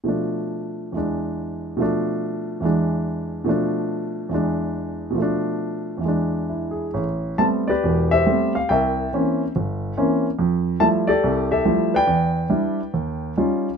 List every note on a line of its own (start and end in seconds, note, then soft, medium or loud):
0.04 0.93 B2 soft
0.04 0.93 F3 soft
0.04 0.94 A3 soft
0.08 0.95 D4 soft
0.92 1.79 E2 soft
0.92 1.80 E3 soft
0.92 1.81 G#3 soft
0.97 1.80 D4 soft
1.77 2.61 B2 medium
1.77 2.62 F3 soft
1.77 2.63 A3 soft
1.82 2.64 D4 medium
2.60 3.45 E2 soft
2.60 3.46 E3 soft
2.60 3.47 G#3 soft
2.65 3.47 D4 soft
3.44 4.29 B2 medium
3.44 4.30 F3 soft
3.44 4.31 A3 soft
3.49 4.32 D4 medium
4.29 5.16 E2 soft
4.29 5.17 E3 soft
4.29 5.17 G#3 soft
4.34 5.18 D4 soft
5.10 6.00 B2 soft
5.10 6.02 F3 soft
5.18 6.04 A3 soft
5.22 6.06 D4 medium
5.98 6.92 E2 soft
5.98 6.94 E3 soft
6.05 6.96 G#3 soft
6.05 6.97 D4 soft
6.50 6.85 E4 soft
6.71 7.03 G#4 soft
6.94 7.33 A1 medium
7.38 7.70 G3 soft
7.38 7.70 A3 soft
7.38 7.70 B3 soft
7.38 7.70 C4 soft
7.38 7.45 A5 medium
7.68 8.12 G4 medium
7.68 8.52 B4 medium
7.68 8.13 D5 medium
7.84 8.22 E1 medium
7.84 8.22 E2 medium
8.11 8.67 G4 soft
8.11 8.67 C5 medium
8.11 8.52 E5 medium
8.26 8.56 G3 soft
8.26 8.57 A3 soft
8.26 8.57 B3 soft
8.26 8.57 C4 medium
8.55 8.69 F5 medium
8.69 9.07 C2 medium
8.69 9.51 A#4 medium
8.69 9.51 E5 medium
8.69 9.50 G5 medium
9.13 9.42 E3 soft
9.13 9.42 A#3 soft
9.13 9.42 C4 soft
9.13 9.42 C#4 medium
9.56 9.92 G1 medium
9.97 10.26 E3 soft
9.97 10.26 A#3 medium
9.97 10.26 C4 soft
9.97 10.26 C#4 medium
10.39 10.75 F2 medium
10.80 11.09 F3 medium
10.80 11.09 G3 soft
10.80 11.09 A3 soft
10.80 11.09 E4 medium
10.80 10.86 A5 medium
11.07 11.50 G4 medium
11.07 11.50 A4 medium
11.07 11.47 D5 medium
11.24 11.59 C2 medium
11.51 12.03 G4 medium
11.51 12.04 A4 medium
11.51 11.94 E5 medium
11.65 11.94 F3 soft
11.65 11.94 G3 soft
11.65 11.94 A3 soft
11.65 11.94 E4 medium
11.94 12.90 B4 medium
11.94 12.91 D5 medium
11.94 13.65 G5 medium
12.07 12.44 E2 medium
12.50 12.79 G3 soft
12.50 12.79 D4 soft
12.50 12.79 E4 medium
12.94 13.32 D#2 medium
13.37 13.68 G3 soft
13.37 13.68 C#4 soft
13.37 13.68 D#4 soft
13.37 13.68 F4 soft